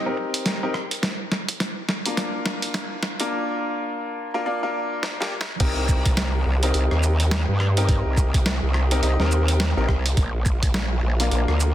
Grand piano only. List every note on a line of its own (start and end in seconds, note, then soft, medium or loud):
0.06 0.59 C4 medium
0.06 0.59 D#4 medium
0.06 0.59 G4 medium
0.06 0.59 A#4 medium
0.63 0.74 C4 medium
0.63 0.74 D#4 medium
0.63 0.74 G4 medium
0.63 0.74 A#4 medium
2.06 3.16 A#3 medium
2.06 3.16 D4 medium
2.06 3.16 F4 medium
2.06 3.16 A#4 medium
3.20 4.30 A#3 loud
3.20 4.30 D4 medium
3.20 4.30 F4 medium
3.20 4.30 A#4 loud
4.34 4.44 A#3 medium
4.34 4.44 D4 medium
4.34 4.44 F4 medium
4.34 4.44 A#4 loud
4.46 4.59 A#3 medium
4.46 4.59 D4 medium
4.46 4.59 F4 medium
4.46 4.59 D5 medium
4.63 5.16 A#3 medium
4.63 5.16 D4 medium
4.63 5.16 F4 medium
4.63 5.16 A#4 medium
5.20 5.31 A#3 medium
5.20 5.31 D4 medium
5.20 5.31 F4 medium
5.20 5.31 G4 loud
5.61 6.46 C4 loud
5.61 6.46 D#4 medium
5.61 6.46 G4 medium
5.61 6.46 A#4 loud
6.63 7.73 C4 medium
6.63 7.73 D#4 medium
6.63 7.73 G4 medium
6.63 7.73 A#4 medium
7.77 8.88 C4 medium
7.77 8.88 D#4 medium
7.77 8.88 G4 medium
7.77 8.88 A#4 loud
8.92 9.01 C4 medium
8.92 9.01 D#4 medium
8.92 9.01 G4 medium
8.92 9.01 A#4 medium
9.03 9.16 C4 medium
9.03 9.16 D#4 medium
9.03 9.16 G4 medium
9.03 9.16 D#5 medium
9.20 9.73 C4 medium
9.20 9.73 D#4 medium
9.20 9.73 G4 medium
9.20 9.73 A#4 medium
9.77 9.88 C4 medium
9.77 9.88 D#4 medium
9.77 9.88 G4 medium
9.77 9.88 A#4 medium
11.20 11.74 A#3 medium
11.20 11.74 D4 medium
11.20 11.74 F4 medium
11.20 11.74 A#4 medium